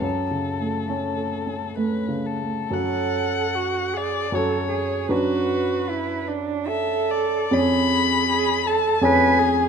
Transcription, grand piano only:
\new Staff \with { instrumentName = "Grand piano" } { \time 3/4 \key fis \minor \tempo 4 = 76 \tuplet 3/2 { fis,8 cis8 a8 cis'8 a'8 cis'8 a8 cis8 a8 } | <fis, cis' fis' a'>2 <fis, cis' fis' a'>4 | <fis, d' fis' b'>2. | <eis, cis' gis' cis''>2 <eis, cis' gis' cis''>4 | }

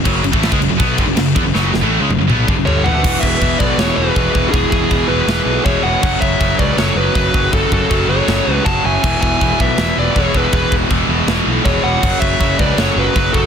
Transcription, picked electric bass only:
\new Staff \with { instrumentName = "Picked electric bass" } { \clef bass \time 4/4 \key e \mixolydian \tempo 4 = 160 fis,,8 fis,,16 a,,8 cis,16 fis,,16 fis,,16 b,,8 g,,16 fis,,16 fis,,8 e,16 fis,,16 | fis,,8 fis,,16 a,,8 cis,16 fis,,16 fis,,16 b,,8 g,,16 fis,,16 g,,8 a,,16 d,16 | e,,8 e,,8 e,,8 b,,8 e,,8 e,,8 e,,8 e,,8 | e,,8 e,,8 e,,8 e,,8 e,,8 b,,8 e,,8 e,,8 |
fis,,8 fis,,8 fis,,8 cis,8 fis,,8 fis,,8 fis,,8 fis,,8 | fis,,8 fis,,8 fis,,8 fis,,8 fis,,8 cis,8 fis,,8 fis,,8 | e,,8 e,,8 e,,8 b,,8 e,,8 e,,8 e,,8 e,,8 | e,,8 e,,8 e,,8 e,,8 e,,8 b,,8 e,,8 e,,8 |
fis,,8 fis,,8 fis,,8 cis,8 fis,,8 fis,,8 fis,,8 fis,,8 | }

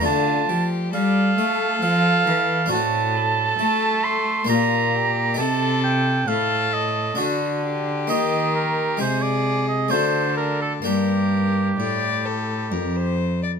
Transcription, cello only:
\new Staff \with { instrumentName = "Cello" } { \clef bass \time 3/4 \key d \minor \tempo 4 = 66 d8 f8 g8 a8 f8 e8 | \key g \minor a,4 a4 bes,4 | c4 a,4 d4 | ees4 c4 d4 |
g,4 a,4 f,4 | }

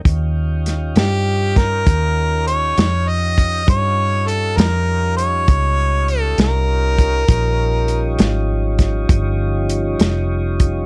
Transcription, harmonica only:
\new Staff \with { instrumentName = "Harmonica" } { \time 12/8 \key ees \mixolydian \tempo 4. = 66 r4. g'4 bes'4. des''4 ees''4 | des''4 a'8 bes'4 des''4. a'8 bes'4.~ | bes'4. r1 r8 | }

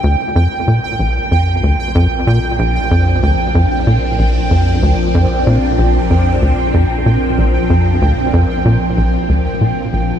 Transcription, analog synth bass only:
\new Staff \with { instrumentName = "Analog synth bass" } { \clef bass \time 4/4 \key bes \major \tempo 4 = 94 d,8 f,8 bes,8 bes,,8 f,8 d,8 f,8 bes,8 | bes,,8 f,8 d,8 f,8 bes,8 bes,,8 f,8 d,8 | f,8 bes,8 bes,,8 f,8 d,8 f,8 bes,8 bes,,8 | f,8 d,8 f,8 bes,8 bes,,8 d,8 bes,8 bes,,8 | }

